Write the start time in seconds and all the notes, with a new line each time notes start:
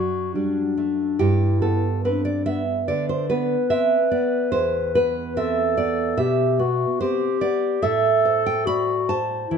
Already playing: F#2 F#3 F#4 D5
0.34 G3 D4
0.78 A3
1.19 G2 E4 G4
1.62 B3 A4
2.05 C4 D4 B4
2.25 D5
2.46 B3 E5
2.88 D3 B4 D5
3.09 C5
3.30 B3 B4
3.70 C4 E5
4.11 B3 D5
4.52 E2 C5
4.95 B3 B4
5.37 C4 A4 E5
5.77 B3 D5
6.17 B2 G4 E5
6.59 B3 F#4
7.01 C4 G4 C5
7.41 B3 D5
7.82 A2 A4 E5
8.25 C5
8.46 G5
8.66 F#4 D5 B5
9.09 C5 A5
9.48 E3 E4